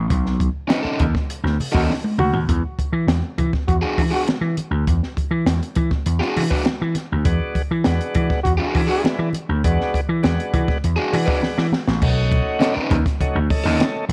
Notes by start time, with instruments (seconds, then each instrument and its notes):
0.10 slap bass B1, kick, closed hi-hat, muted conga
0.26 snare
0.40 kick, closed hi-hat, muted conga
0.68 overdriven electric guitar C#4 D#4 B4, snare, closed hi-hat, high conga
0.83 overdriven electric guitar C#4 D#4 A4, muted slap bass stroke
0.99 slap bass D#2, kick, closed hi-hat, muted conga, low conga
1.15 kick, snare
1.30 closed hi-hat
1.44 slap bass D2, snare
1.60 open hi-hat, muted conga, low conga
1.72 slap bass D#2, overdriven electric guitar C#4 D#4 A4, trombone F#4, kick
1.89 snare, high conga
2.04 high tom
2.18 slap bass D2, trombone F#4, mid tom, high conga
2.32 slap bass D#2, floor tom, high conga
2.49 slap bass E2, kick, closed hi-hat, muted conga
2.79 muted slap bass stroke, kick, closed hi-hat, muted conga
2.93 slap bass E3
3.07 slap bass E2, snare, closed hi-hat, high conga
3.38 slap bass E3, kick, closed hi-hat, muted conga, low conga
3.53 kick, snare
3.67 slap bass E2, trombone F#4, kick, closed hi-hat
3.82 overdriven electric guitar D4 F#4 G#4
3.98 slap bass E3, kick, open hi-hat, muted conga
4.11 overdriven electric guitar D4 F#4 G#4, trombone F#4
4.28 snare, closed hi-hat, high conga
4.41 slap bass E3
4.57 closed hi-hat, high conga
4.71 slap bass D2
4.87 slap bass E2, kick, closed hi-hat, muted conga
5.03 snare
5.17 muted slap bass stroke, kick, closed hi-hat, muted conga
5.31 slap bass E3
5.46 slap bass E2, snare, closed hi-hat, high conga
5.63 closed hi-hat
5.75 slap bass E3, kick, closed hi-hat, muted conga
5.91 kick, snare
6.06 slap bass E2, closed hi-hat
6.19 overdriven electric guitar D4 F#4 G#4, snare
6.37 slap bass E3, open hi-hat, muted conga, low conga
6.51 overdriven electric guitar D4 F#4 B4, kick
6.65 snare, closed hi-hat, high conga
6.82 slap bass E3
6.95 snare, closed hi-hat, high conga
7.12 slap bass D2
7.25 slap bass E2, tonewheel organ G#3 B3 D4 F#4, kick, closed hi-hat, muted conga
7.55 muted slap bass stroke, kick, closed hi-hat, muted conga
7.71 slap bass E3
7.84 slap bass E2, tonewheel organ G#3 B3 D4 F#4, snare, closed hi-hat, high conga
8.01 closed hi-hat
8.15 slap bass E3, kick, closed hi-hat, muted conga, low conga
8.30 kick, snare
8.43 slap bass E2, trombone F#4, kick, closed hi-hat
8.58 overdriven electric guitar D4 F#4 G#4
8.74 slap bass E3, tonewheel organ G#3 B3 D4 E4, kick, open hi-hat, muted conga
8.87 overdriven electric guitar D4 F#4 G#4, trombone F#4
9.04 snare, closed hi-hat, high conga
9.19 slap bass E3
9.33 closed hi-hat, high conga
9.49 slap bass D2
9.64 slap bass E2, tonewheel organ G#3 B3 D4 F#4, kick, closed hi-hat, muted conga
9.81 snare
9.94 muted slap bass stroke, kick, closed hi-hat, muted conga
10.09 slap bass E3
10.23 slap bass E2, tonewheel organ G#3 B3 D4 F#4, snare, closed hi-hat, high conga
10.40 closed hi-hat
10.54 slap bass E3, kick, closed hi-hat, muted conga, low conga
10.68 kick, snare
10.84 slap bass E2, closed hi-hat
10.96 overdriven electric guitar D4 F#4 G#4
11.12 slap bass E3, tonewheel organ G#3 B3 D4 F#4, open hi-hat, muted conga, low conga
11.26 overdriven electric guitar D4 F#4 B4, kick
11.42 snare, high conga
11.58 slap bass E3, snare
11.72 snare, high conga
11.88 slap bass A1, snare
12.02 slap bass B1, tonewheel organ A3 C#4 D#4 F#4, kick, crash, muted conga
12.32 kick, closed hi-hat, muted conga
12.60 overdriven electric guitar C#4 D#4 A4, snare, closed hi-hat, high conga
12.74 overdriven electric guitar C#4 D#4 B4, muted slap bass stroke
12.90 slap bass D#2, kick, closed hi-hat, muted conga, low conga
13.06 kick, snare, closed hi-hat
13.20 tonewheel organ A3 C#4 D#4 F#4, kick, closed hi-hat, low conga
13.35 slap bass D2
13.50 tonewheel organ A3 C#4 D#4 A4, kick, open hi-hat, muted conga
13.64 slap bass D#2, overdriven electric guitar C#4 D#4 A4
13.80 snare, closed hi-hat, high conga
14.09 slap bass B1, closed hi-hat, high conga